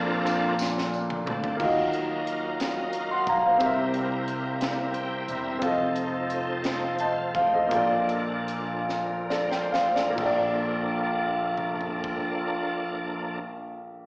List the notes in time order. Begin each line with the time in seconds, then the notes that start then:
Already playing: A#1 A#2 A#3 C4 D4 F4 A4 A#4 D5
0.26 ride, tambourine
0.59 snare, tambourine
0.78 snare
0.94 tambourine
1.10 mid tom
1.26 D2 C4 D4 A4, mid tom
1.44 floor tom
1.57 D#2 D#3 F3 A#3 D#4 F4 F5, kick, crash
1.61 F#4 A#4 D#5
1.67 F#3
1.93 closed hi-hat
2.27 closed hi-hat
2.60 snare, closed hi-hat
2.93 closed hi-hat
3.11 F#5 C6
3.27 B1 F5 A#5, kick, closed hi-hat
3.45 C5 F5
3.58 C2 C3 G3 C4 E4 G4 A#4, kick, closed hi-hat
3.63 A#4 E5
3.94 closed hi-hat
4.28 closed hi-hat
4.61 snare, closed hi-hat
4.94 G5, closed hi-hat
5.28 E1 E5, closed hi-hat
5.59 F1 F3 C4 D#4 F4 A4, kick, closed hi-hat
5.64 A4 D#5
5.96 closed hi-hat
6.30 closed hi-hat
6.64 snare, closed hi-hat
6.99 C5 D#5 A5, closed hi-hat
7.17 A4 F5
7.35 A1 G4 C5 D#5 F5, kick, closed hi-hat
7.53 D#4 A4 C5 D#5
7.69 A#1 A#2 F3 A#3 D4 F4 G4, kick, closed hi-hat
7.73 A4 D5
7.78 A4
8.09 closed hi-hat
8.48 closed hi-hat
8.89 snare
9.29 D4 A4 A#4 D5, snare
9.49 C5 D5 G5, snare
9.72 A1 C5 F5, snare
9.94 D4 A4 A#4 D5, snare
10.10 A#3
10.15 A#1 F3 A#3 D4 F4 A4, kick, crash
10.20 A4
10.26 D5
11.57 mid tom
11.81 floor tom
12.04 kick